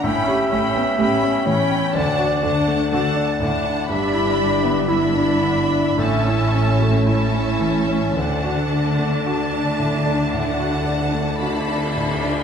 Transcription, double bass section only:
X:1
M:4/4
L:1/8
Q:1/4=56
K:D
V:1 name="Double bass section" clef=bass
A,,, A,,, A,,, A,,, D,, D,, D,, D,, | G,,,4 A,,,4 | D,,8 |]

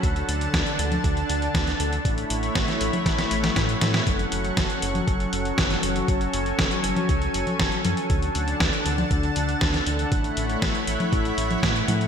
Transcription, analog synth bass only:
X:1
M:4/4
L:1/8
Q:1/4=119
K:F#m
V:1 name="Analog synth bass" clef=bass
D,, D,, D,, D,, D,, D,, D,, D,, | A,,, A,,, A,,, A,,, A,,, A,,, A,, A,, | F,,, F,,, F,,, F,,, F,,, F,,, F,,, F,,, | F,,, F,,, F,,, F,,, C,, F,,, F,,, F,, |
D,, D,, D,, D,, D,, D,, D,, D,, | A,,, A,,, A,,, A,,, A,,, A,,, A,, A,, |]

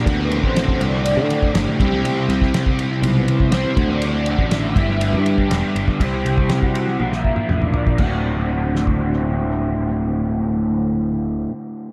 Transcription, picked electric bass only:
X:1
M:4/4
L:1/16
Q:1/4=121
K:Dmix
V:1 name="Picked electric bass" clef=bass
D,,3 A,,,3 C,,3 D,3 G,,, z C,,2 | z2 C,,2 z4 B,,,2 z2 C,, z D,,2- | D,,3 A,,,3 G,,,3 G,,3 E,,, z G,,, z | C,,2 C,,2 z4 _B,,,2 z2 A,,,2 z2 |
D,,,16- | D,,,16 |]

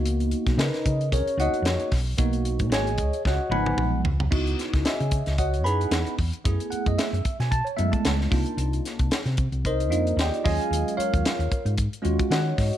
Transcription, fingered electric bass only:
X:1
M:4/4
L:1/16
Q:"Swing 16ths" 1/4=113
K:Dblyd
V:1 name="Fingered electric bass" clef=bass
D,,3 _C,, D, z D,2 D,, z D,, z F,, z C,,2 | _C,,3 B,, A,,,2 D,, z D,, z A,,,2 C,,2 D,,2 | D,,2 z D,, z D,2 D,,3 _G,,2 _F,, z F,, z | _G,, z2 G,, z G,, z _C,2 z G,, z D,,2 =C,, z |
C,,2 z C,, z C,2 C,,3 F,,2 E,, z E,, z | E,, z2 E,, z E,, z A,,2 z E,, z E,2 A,, z |]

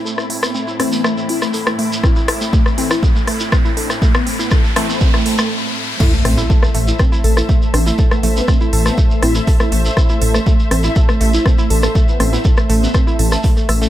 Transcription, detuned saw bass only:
X:1
M:4/4
L:1/8
Q:1/4=121
K:Am
V:1 name="Detuned saw bass" clef=bass
z8 | z8 | z8 | z A,,, z A,,, z A,,, z A,,, |
z A,,, z A,,, z A,,, z A,,, | z A,,, z A,,, z A,,, z A,,, | z A,,, z A,,, z A,,, z A,,, |]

